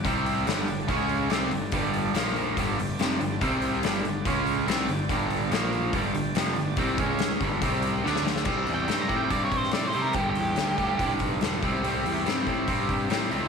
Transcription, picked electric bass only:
\new Staff \with { instrumentName = "Picked electric bass" } { \clef bass \time 4/4 \key g \mixolydian \tempo 4 = 143 c,4 g,,8 g,,8 cis,4 c,8 g,,8 | g,,4 bes,,4 g,,8 g,,8 f,,8 g,,8 | c,4 g,,8 g,,8 cis,4 c,8 g,,8 | g,,4 bes,,4 g,,8 g,,8 f,,8 g,,8 |
c,8 cis,4 g,,8 c,4 d,4 | \key c \lydian c,8 e,8 g,8 a,8 g,8 g,8 a,8 c8 | g,,8 e,8 d,8 d,8 c,8 b,,8 e,,8 c,8 | c,8 e,8 g,8 a,8 g,8 g,8 a,8 cis,8 | }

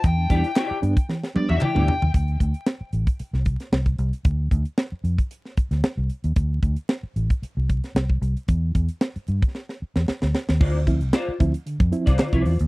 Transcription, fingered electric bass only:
\new Staff \with { instrumentName = "Fingered electric bass" } { \clef bass \time 4/4 \key d \dorian \tempo 4 = 114 e,8 e,16 r8. g,16 r4 e,16 r16 d,16 r16 ees,16 | d,8 d,16 r8. a,,16 r8 c,8 r16 c,8 c,16 r16 | d,8 d,16 r8. f,16 r4 d,16 r16 c,16 r16 ees,16 | d,8 d,16 r8. a,,16 r8 c,8 r16 c,8 c,16 r16 |
e,8 e,16 r8. g,16 r4 e,16 r16 d,16 r16 ees,16 | d,8. c,16 r8 d,16 r8 f,16 r16 c,16 r16 c,16 e,16 ees,16 | }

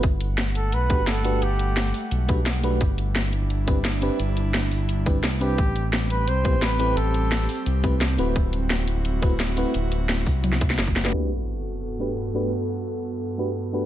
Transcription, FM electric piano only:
\new Staff \with { instrumentName = "FM electric piano" } { \time 4/4 \key g \major \tempo 4 = 173 r2 r8 <a d' fis' g' b'>16 r8. <a d' fis' g' b'>8 | r2 r8 <a d' fis' g' b'>16 r8. <a d' fis' g' b'>8 | r2 r8 <c' d' e' g' b'>16 r8. <c' d' e' g' b'>8 | r2 r8 <c' d' e' g' b'>16 r8. <c' d' e' g' b'>8 |
r2 r8 <a c' e' g' b'>16 r8. <a c' e' g' b'>8 | r2 r8 <a c' e' g' b'>16 r8. <a c' e' fis' b'>8 | r2 r8 <a c' e' fis' b'>16 r8. <a c' e' fis' b'>8 | r2. r8. <a d' fis' g' b'>16~ |
<a d' fis' g' b'>8 r2 <a d' fis' g' b'>16 r8. <a d' fis' g' b'>8 | r2 r8 <a d' fis' g' b'>16 r8. <a d' fis' g' b'>8 | }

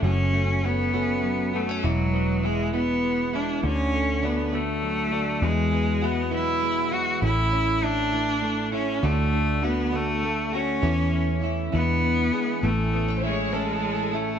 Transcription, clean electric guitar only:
\new Staff \with { instrumentName = "Clean electric guitar" } { \time 6/8 \key a \major \tempo 4. = 67 fis,8 a8 cis'8 a8 fis8 b16 cis'16 | e8 b8 e'8 b8 gis8 e'8 | d8 a8 d'8 a8 fis8 d'8 | e8 b8 fis'8 b8 gis8 fis'8 |
a,8 cis'8 e'4 a8 e'8 | d8 d'8 fis'4 a8 fis'8 | e8 cis'8 e'8 e8 b8 gis'8 | a,8 b16 cis'16 e'8 cis'4 e'8 | }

